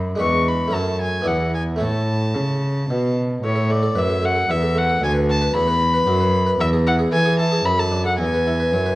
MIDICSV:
0, 0, Header, 1, 4, 480
1, 0, Start_track
1, 0, Key_signature, 3, "major"
1, 0, Tempo, 536673
1, 186, Time_signature, 3, 2, 24, 8
1, 3548, Tempo, 528634
1, 8074, End_track
2, 0, Start_track
2, 0, Title_t, "Violin"
2, 0, Program_c, 0, 40
2, 187, Note_on_c, 0, 85, 85
2, 432, Note_on_c, 0, 83, 72
2, 446, Note_off_c, 0, 85, 0
2, 666, Note_on_c, 0, 81, 79
2, 679, Note_off_c, 0, 83, 0
2, 902, Note_off_c, 0, 81, 0
2, 906, Note_on_c, 0, 80, 76
2, 1140, Note_on_c, 0, 78, 70
2, 1153, Note_off_c, 0, 80, 0
2, 1376, Note_off_c, 0, 78, 0
2, 1381, Note_on_c, 0, 80, 68
2, 1453, Note_off_c, 0, 80, 0
2, 1627, Note_on_c, 0, 81, 69
2, 2809, Note_off_c, 0, 81, 0
2, 3078, Note_on_c, 0, 73, 72
2, 3321, Note_on_c, 0, 74, 72
2, 3334, Note_off_c, 0, 73, 0
2, 3567, Note_on_c, 0, 76, 77
2, 3580, Note_off_c, 0, 74, 0
2, 3803, Note_on_c, 0, 78, 85
2, 3817, Note_off_c, 0, 76, 0
2, 4038, Note_on_c, 0, 76, 86
2, 4052, Note_off_c, 0, 78, 0
2, 4283, Note_on_c, 0, 78, 85
2, 4297, Note_off_c, 0, 76, 0
2, 4516, Note_off_c, 0, 78, 0
2, 4521, Note_on_c, 0, 80, 93
2, 4594, Note_off_c, 0, 80, 0
2, 4760, Note_on_c, 0, 81, 96
2, 4987, Note_off_c, 0, 81, 0
2, 4993, Note_on_c, 0, 83, 108
2, 5806, Note_off_c, 0, 83, 0
2, 5944, Note_on_c, 0, 76, 97
2, 6016, Note_off_c, 0, 76, 0
2, 6183, Note_on_c, 0, 78, 94
2, 6255, Note_off_c, 0, 78, 0
2, 6411, Note_on_c, 0, 80, 102
2, 6646, Note_off_c, 0, 80, 0
2, 6658, Note_on_c, 0, 81, 97
2, 6897, Note_on_c, 0, 83, 99
2, 6911, Note_off_c, 0, 81, 0
2, 7024, Note_on_c, 0, 81, 92
2, 7037, Note_off_c, 0, 83, 0
2, 7259, Note_off_c, 0, 81, 0
2, 7265, Note_on_c, 0, 78, 79
2, 7372, Note_off_c, 0, 78, 0
2, 7378, Note_on_c, 0, 80, 78
2, 8074, Note_off_c, 0, 80, 0
2, 8074, End_track
3, 0, Start_track
3, 0, Title_t, "Harpsichord"
3, 0, Program_c, 1, 6
3, 0, Note_on_c, 1, 42, 52
3, 0, Note_on_c, 1, 66, 45
3, 0, Note_on_c, 1, 71, 48
3, 137, Note_off_c, 1, 66, 0
3, 138, Note_on_c, 1, 56, 44
3, 144, Note_off_c, 1, 71, 0
3, 149, Note_off_c, 1, 42, 0
3, 154, Note_on_c, 1, 62, 46
3, 169, Note_on_c, 1, 71, 45
3, 180, Note_on_c, 1, 40, 52
3, 608, Note_on_c, 1, 57, 42
3, 621, Note_off_c, 1, 40, 0
3, 621, Note_off_c, 1, 56, 0
3, 625, Note_on_c, 1, 61, 43
3, 630, Note_off_c, 1, 62, 0
3, 633, Note_on_c, 1, 73, 42
3, 637, Note_off_c, 1, 71, 0
3, 648, Note_on_c, 1, 42, 48
3, 1087, Note_on_c, 1, 59, 43
3, 1097, Note_off_c, 1, 42, 0
3, 1098, Note_off_c, 1, 57, 0
3, 1106, Note_on_c, 1, 64, 44
3, 1107, Note_off_c, 1, 61, 0
3, 1111, Note_off_c, 1, 73, 0
3, 1115, Note_on_c, 1, 74, 45
3, 1128, Note_on_c, 1, 40, 48
3, 1575, Note_on_c, 1, 57, 42
3, 1578, Note_off_c, 1, 64, 0
3, 1582, Note_off_c, 1, 40, 0
3, 1582, Note_off_c, 1, 59, 0
3, 1589, Note_on_c, 1, 64, 43
3, 1596, Note_off_c, 1, 74, 0
3, 1607, Note_on_c, 1, 73, 41
3, 1614, Note_on_c, 1, 45, 44
3, 2068, Note_off_c, 1, 45, 0
3, 2098, Note_on_c, 1, 49, 40
3, 2551, Note_off_c, 1, 49, 0
3, 2597, Note_on_c, 1, 47, 45
3, 3010, Note_off_c, 1, 57, 0
3, 3017, Note_off_c, 1, 64, 0
3, 3026, Note_off_c, 1, 73, 0
3, 3037, Note_off_c, 1, 47, 0
3, 3076, Note_on_c, 1, 45, 51
3, 3182, Note_on_c, 1, 69, 46
3, 3310, Note_on_c, 1, 57, 45
3, 3311, Note_off_c, 1, 69, 0
3, 3424, Note_on_c, 1, 69, 45
3, 3434, Note_off_c, 1, 57, 0
3, 3514, Note_off_c, 1, 45, 0
3, 3535, Note_on_c, 1, 42, 50
3, 3537, Note_on_c, 1, 71, 38
3, 3551, Note_off_c, 1, 69, 0
3, 3663, Note_off_c, 1, 71, 0
3, 3665, Note_on_c, 1, 69, 47
3, 3782, Note_on_c, 1, 57, 40
3, 3794, Note_off_c, 1, 69, 0
3, 3902, Note_on_c, 1, 69, 44
3, 3912, Note_off_c, 1, 57, 0
3, 3987, Note_off_c, 1, 42, 0
3, 4026, Note_on_c, 1, 40, 54
3, 4029, Note_on_c, 1, 64, 47
3, 4032, Note_off_c, 1, 69, 0
3, 4144, Note_on_c, 1, 69, 44
3, 4155, Note_off_c, 1, 64, 0
3, 4258, Note_on_c, 1, 57, 49
3, 4272, Note_off_c, 1, 69, 0
3, 4389, Note_off_c, 1, 57, 0
3, 4389, Note_on_c, 1, 69, 49
3, 4471, Note_off_c, 1, 40, 0
3, 4500, Note_on_c, 1, 38, 57
3, 4509, Note_off_c, 1, 69, 0
3, 4615, Note_on_c, 1, 71, 49
3, 4748, Note_off_c, 1, 71, 0
3, 4864, Note_on_c, 1, 71, 55
3, 4946, Note_off_c, 1, 38, 0
3, 4981, Note_on_c, 1, 73, 44
3, 4984, Note_on_c, 1, 40, 57
3, 4991, Note_off_c, 1, 71, 0
3, 5100, Note_on_c, 1, 71, 54
3, 5102, Note_off_c, 1, 73, 0
3, 5227, Note_off_c, 1, 71, 0
3, 5338, Note_on_c, 1, 71, 52
3, 5424, Note_off_c, 1, 40, 0
3, 5458, Note_on_c, 1, 66, 59
3, 5463, Note_on_c, 1, 42, 64
3, 5466, Note_off_c, 1, 71, 0
3, 5580, Note_on_c, 1, 71, 49
3, 5585, Note_off_c, 1, 66, 0
3, 5705, Note_off_c, 1, 71, 0
3, 5817, Note_on_c, 1, 71, 55
3, 5901, Note_off_c, 1, 42, 0
3, 5934, Note_on_c, 1, 40, 62
3, 5937, Note_off_c, 1, 71, 0
3, 6056, Note_on_c, 1, 68, 53
3, 6181, Note_off_c, 1, 68, 0
3, 6182, Note_on_c, 1, 64, 54
3, 6291, Note_on_c, 1, 68, 57
3, 6303, Note_off_c, 1, 64, 0
3, 6374, Note_off_c, 1, 40, 0
3, 6411, Note_on_c, 1, 69, 46
3, 6415, Note_on_c, 1, 52, 60
3, 6417, Note_off_c, 1, 68, 0
3, 6531, Note_off_c, 1, 69, 0
3, 6532, Note_on_c, 1, 68, 54
3, 6657, Note_off_c, 1, 68, 0
3, 6658, Note_on_c, 1, 64, 52
3, 6774, Note_on_c, 1, 68, 50
3, 6780, Note_off_c, 1, 64, 0
3, 6856, Note_off_c, 1, 52, 0
3, 6892, Note_off_c, 1, 68, 0
3, 6892, Note_on_c, 1, 42, 58
3, 7011, Note_on_c, 1, 69, 46
3, 7136, Note_on_c, 1, 62, 44
3, 7138, Note_off_c, 1, 69, 0
3, 7256, Note_on_c, 1, 69, 45
3, 7261, Note_off_c, 1, 62, 0
3, 7339, Note_off_c, 1, 42, 0
3, 7376, Note_off_c, 1, 69, 0
3, 7390, Note_on_c, 1, 40, 54
3, 7517, Note_on_c, 1, 71, 43
3, 7635, Note_off_c, 1, 71, 0
3, 7636, Note_on_c, 1, 64, 43
3, 7753, Note_on_c, 1, 71, 44
3, 7756, Note_off_c, 1, 64, 0
3, 7835, Note_off_c, 1, 40, 0
3, 7876, Note_off_c, 1, 71, 0
3, 7876, Note_on_c, 1, 73, 37
3, 7877, Note_on_c, 1, 42, 46
3, 7990, Note_on_c, 1, 71, 45
3, 7992, Note_off_c, 1, 73, 0
3, 8074, Note_off_c, 1, 42, 0
3, 8074, Note_off_c, 1, 71, 0
3, 8074, End_track
4, 0, Start_track
4, 0, Title_t, "Cello"
4, 0, Program_c, 2, 42
4, 0, Note_on_c, 2, 42, 70
4, 175, Note_off_c, 2, 42, 0
4, 192, Note_on_c, 2, 40, 69
4, 651, Note_off_c, 2, 40, 0
4, 656, Note_on_c, 2, 42, 55
4, 1127, Note_off_c, 2, 42, 0
4, 1142, Note_on_c, 2, 40, 61
4, 1620, Note_on_c, 2, 45, 61
4, 1634, Note_off_c, 2, 40, 0
4, 2103, Note_on_c, 2, 49, 53
4, 2116, Note_off_c, 2, 45, 0
4, 2586, Note_off_c, 2, 49, 0
4, 2592, Note_on_c, 2, 47, 56
4, 3061, Note_off_c, 2, 47, 0
4, 3066, Note_on_c, 2, 45, 67
4, 3511, Note_off_c, 2, 45, 0
4, 3546, Note_on_c, 2, 42, 60
4, 4019, Note_off_c, 2, 42, 0
4, 4025, Note_on_c, 2, 40, 66
4, 4498, Note_off_c, 2, 40, 0
4, 4511, Note_on_c, 2, 38, 73
4, 4978, Note_off_c, 2, 38, 0
4, 4982, Note_on_c, 2, 40, 69
4, 5450, Note_off_c, 2, 40, 0
4, 5457, Note_on_c, 2, 42, 83
4, 5925, Note_off_c, 2, 42, 0
4, 5932, Note_on_c, 2, 40, 83
4, 6400, Note_off_c, 2, 40, 0
4, 6408, Note_on_c, 2, 52, 72
4, 6879, Note_off_c, 2, 52, 0
4, 6887, Note_on_c, 2, 42, 76
4, 7373, Note_on_c, 2, 40, 69
4, 7387, Note_off_c, 2, 42, 0
4, 7859, Note_on_c, 2, 42, 62
4, 7873, Note_off_c, 2, 40, 0
4, 8074, Note_off_c, 2, 42, 0
4, 8074, End_track
0, 0, End_of_file